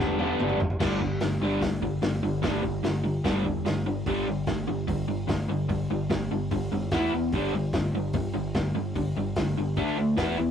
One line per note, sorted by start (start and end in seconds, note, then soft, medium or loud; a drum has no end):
0.00 0.31 E1 loud
0.00 0.17 G2 medium
0.00 0.18 D3 medium
0.00 0.19 G3 medium
0.00 0.18 B3 medium
0.00 0.17 D4 medium
0.18 0.59 G3 medium
0.18 0.59 B3 medium
0.18 0.58 D4 medium
0.18 high tom medium
0.22 0.61 G2 medium
0.22 0.60 D3 medium
0.39 0.56 G1 loud
0.39 mid tom medium
0.49 mid tom medium
0.60 0.76 G1 medium
0.60 floor tom loud
0.70 floor tom medium
0.80 0.98 G1 loud
0.80 0.99 G2 medium
0.80 1.00 D3 medium
0.80 1.00 G3 medium
0.80 kick loud
0.80 snare loud
0.80 crash loud
1.00 1.18 G1 medium
1.00 1.19 G2 medium
1.00 1.19 D3 medium
1.00 kick medium
1.20 1.38 G1 medium
1.20 1.40 G2 medium
1.20 1.40 D3 medium
1.20 snare loud
1.20 open hi-hat medium
1.40 1.58 G1 medium
1.40 1.60 G2 loud
1.40 1.60 D3 loud
1.40 1.62 G3 loud
1.61 1.97 G1 medium
1.61 1.80 G2 medium
1.61 1.80 D3 medium
1.61 kick loud
1.61 snare loud
1.61 open hi-hat medium
1.82 2.00 G2 medium
1.82 2.01 D3 medium
1.82 kick medium
2.02 2.20 G1 medium
2.02 2.21 G2 medium
2.02 2.21 D3 medium
2.02 snare loud
2.02 open hi-hat medium
2.22 2.40 G1 loud
2.22 2.41 G2 medium
2.22 2.41 D3 loud
2.42 2.61 G1 medium
2.42 2.61 G2 medium
2.42 2.62 D3 loud
2.42 2.63 G3 loud
2.42 kick loud
2.42 snare loud
2.42 open hi-hat medium
2.63 2.81 G1 loud
2.63 2.81 G2 medium
2.63 2.82 D3 medium
2.63 kick medium
2.83 3.19 G1 medium
2.83 3.02 G2 medium
2.83 3.02 D3 medium
2.83 snare loud
2.83 open hi-hat medium
3.04 3.22 G2 medium
3.04 3.22 D3 medium
3.24 3.42 G1 loud
3.24 3.44 G2 medium
3.24 3.44 D3 medium
3.24 3.44 G3 loud
3.24 kick loud
3.24 snare loud
3.24 open hi-hat medium
3.45 3.62 E1 medium
3.45 3.63 G2 medium
3.45 3.64 D3 medium
3.45 kick medium
3.65 4.01 G1 loud
3.65 3.84 G2 medium
3.65 3.84 D3 medium
3.65 snare loud
3.65 open hi-hat medium
3.87 4.05 G2 medium
3.87 4.05 D3 medium
4.06 4.25 G1 loud
4.06 4.26 G2 medium
4.06 4.26 D3 medium
4.06 4.27 G3 loud
4.06 kick loud
4.06 open hi-hat medium
4.27 4.45 G1 medium
4.27 4.46 G2 medium
4.27 4.46 D3 medium
4.47 4.66 G1 medium
4.47 4.66 G2 medium
4.47 4.66 D3 medium
4.47 kick loud
4.47 snare loud
4.47 open hi-hat medium
4.68 4.86 G1 medium
4.68 4.86 G2 medium
4.68 4.86 D3 medium
4.88 5.07 G1 medium
4.88 5.06 G2 medium
4.88 5.06 D3 medium
4.88 kick loud
4.88 open hi-hat medium
5.07 5.27 G1 medium
5.07 5.26 G2 medium
5.07 5.26 D3 medium
5.27 5.47 G1 loud
5.27 5.46 G2 medium
5.27 5.46 D3 medium
5.27 kick loud
5.27 snare loud
5.27 open hi-hat medium
5.48 5.67 G1 medium
5.48 5.67 G2 medium
5.48 5.67 D3 medium
5.68 5.88 G1 medium
5.68 5.87 G2 medium
5.68 5.87 D3 medium
5.68 kick loud
5.68 open hi-hat medium
5.89 6.08 G1 medium
5.89 6.08 G2 medium
5.89 6.09 D3 medium
6.10 6.29 G1 medium
6.10 6.28 G2 medium
6.10 6.28 D3 medium
6.10 kick loud
6.10 snare loud
6.10 open hi-hat medium
6.30 6.49 G1 medium
6.30 6.49 G2 medium
6.30 6.49 D3 medium
6.51 6.70 G1 loud
6.51 6.69 G2 medium
6.51 6.70 D3 medium
6.51 kick loud
6.51 open hi-hat medium
6.71 6.90 F#1 medium
6.71 6.90 G2 medium
6.71 6.90 D3 medium
6.91 7.10 E1 medium
6.91 7.11 E3 medium
6.91 7.12 B3 medium
6.91 7.12 E4 medium
6.91 kick loud
6.91 snare loud
6.91 open hi-hat medium
7.11 7.30 E1 medium
7.11 7.31 E3 medium
7.11 7.31 B3 medium
7.32 7.51 G1 medium
7.32 7.52 G2 medium
7.32 7.53 D3 medium
7.32 7.53 G3 medium
7.32 kick loud
7.32 open hi-hat medium
7.52 7.71 G1 medium
7.52 7.72 G2 medium
7.52 7.72 D3 medium
7.73 7.92 G1 medium
7.73 7.92 G2 medium
7.73 7.93 D3 medium
7.73 kick loud
7.73 snare loud
7.73 open hi-hat medium
7.92 8.12 G1 medium
7.92 8.13 G2 medium
7.92 8.13 D3 medium
8.13 8.33 G1 medium
8.13 8.32 G2 medium
8.13 8.33 D3 medium
8.13 kick loud
8.13 open hi-hat medium
8.34 8.53 G1 medium
8.34 8.52 G2 medium
8.34 8.53 D3 medium
8.54 8.74 G1 medium
8.54 8.73 G2 medium
8.54 8.73 D3 medium
8.54 kick loud
8.54 snare loud
8.54 open hi-hat medium
8.74 8.93 G1 medium
8.74 8.93 G2 medium
8.74 8.93 D3 medium
8.95 9.14 G1 medium
8.95 9.14 G2 medium
8.95 9.14 D3 medium
8.95 kick medium
8.95 open hi-hat medium
9.16 9.35 G1 medium
9.16 9.35 G2 medium
9.16 9.35 D3 medium
9.36 9.55 G1 medium
9.36 9.55 G2 medium
9.36 9.55 D3 medium
9.36 kick loud
9.36 snare loud
9.36 open hi-hat medium
9.57 9.79 G1 medium
9.57 9.75 G2 medium
9.57 9.76 D3 medium
9.76 9.96 D2 medium
9.76 9.96 D3 medium
9.76 9.96 A3 loud
9.76 9.97 D4 loud
9.76 kick loud
9.76 open hi-hat medium
9.97 10.16 D2 medium
9.97 10.16 D3 medium
9.97 10.16 A3 medium
10.17 10.36 E1 loud
10.17 10.37 E3 medium
10.17 10.37 B3 medium
10.17 10.38 E4 loud
10.17 kick loud
10.17 snare loud
10.17 open hi-hat medium
10.38 10.51 E1 medium
10.38 10.51 E3 medium
10.38 10.51 B3 medium